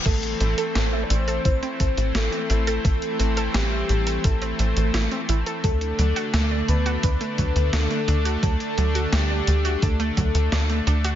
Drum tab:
CC |x---------------|----------------|----------------|----------------|
HH |xxxxx-xxxxxxxxxx|xxxxx-xxxxxxxxxx|xxxxx-xxxxxxxxxx|xxxxx-xxxxxxxxxx|
SD |----o-------o---|----o-------o---|----o-------o---|----o-------o---|
BD |o-------o-o-----|o-------o-------|o-------o-o-----|o-------o-o-----|